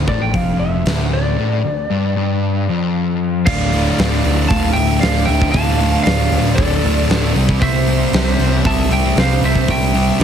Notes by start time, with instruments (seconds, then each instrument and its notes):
0.07 picked electric bass A1, distorted electric guitar A2, lead electric guitar D5, kick
0.22 lead electric guitar G5
0.34 picked electric bass F1, distorted electric guitar F2, lead electric guitar F5, kick, open hi-hat
0.59 lead electric guitar E5
0.85 picked electric bass D1, distorted electric guitar D2, snare, open hi-hat
1.13 lead electric guitar D5
1.38 distorted electric guitar A2
1.64 distorted electric guitar D2
1.90 distorted electric guitar G2
2.17 distorted electric guitar G2
2.69 distorted electric guitar F2
3.46 picked electric bass D1, distorted electric guitar D2 A2 D3, lead electric guitar D5 F5, kick, crash
3.72 distorted electric guitar D2 A2 D3, open hi-hat
3.99 picked electric bass D1, distorted electric guitar D2 A2 D3, snare, open hi-hat
4.25 picked electric bass D1, distorted electric guitar D2 A2 D3, open hi-hat
4.48 picked electric bass D1, distorted electric guitar D2 A2 D3, lead electric guitar F5 A5, kick, open hi-hat
4.73 picked electric bass D1, distorted electric guitar D2 A2, lead electric guitar E5 G5, open hi-hat
4.78 distorted electric guitar D3
5.00 picked electric bass D1, distorted electric guitar D2 A2, lead electric guitar D5 F5, snare, open hi-hat
5.04 distorted electric guitar D3
5.26 picked electric bass D1, distorted electric guitar D2 A2 D3, lead electric guitar E5 G5, open hi-hat
5.42 kick
5.51 picked electric bass D1, distorted electric guitar D2 A2, lead electric guitar F5 A5, kick, open hi-hat
5.56 distorted electric guitar D3
5.80 distorted electric guitar D2 A2 D3, open hi-hat
6.03 picked electric bass D1, distorted electric guitar D2 A2 D3, lead electric guitar D5 F5, snare, open hi-hat
6.32 picked electric bass D1, distorted electric guitar D2 A2 D3, open hi-hat
6.55 picked electric bass D1, distorted electric guitar D2 A2 D3, lead electric guitar A4 D5, kick, open hi-hat
6.84 picked electric bass D1, distorted electric guitar D2 A2 D3, open hi-hat
7.09 picked electric bass D1, distorted electric guitar D2 A2 D3, snare, open hi-hat
7.35 picked electric bass C2, distorted electric guitar C3 G3 C4, open hi-hat
7.49 kick
7.60 picked electric bass C2, distorted electric guitar C3 G3 C4, lead electric guitar C5 E5, kick, open hi-hat
7.87 distorted electric guitar C3 G3 C4, open hi-hat
8.13 picked electric bass C2, distorted electric guitar C3 G3 C4, snare, open hi-hat
8.39 picked electric bass C2, distorted electric guitar C3 G3 C4, open hi-hat
8.65 picked electric bass C2, distorted electric guitar C3 G3 C4, lead electric guitar E5 A5, kick, open hi-hat
8.89 picked electric bass C2, distorted electric guitar C3 G3, lead electric guitar E5 G5, open hi-hat
8.93 distorted electric guitar C4
9.16 picked electric bass C2, distorted electric guitar C3 G3 C4, lead electric guitar C5, snare, open hi-hat
9.20 lead electric guitar F5
9.41 picked electric bass C2, distorted electric guitar C3 G3 C4, lead electric guitar C5, open hi-hat
9.45 lead electric guitar E5
9.55 kick
9.68 picked electric bass C2, distorted electric guitar C3 G3 C4, lead electric guitar E5 G5, kick, open hi-hat
9.94 distorted electric guitar C3 G3 C4, open hi-hat
10.20 picked electric bass C2, distorted electric guitar C3, overdriven electric guitar G3, open hi-hat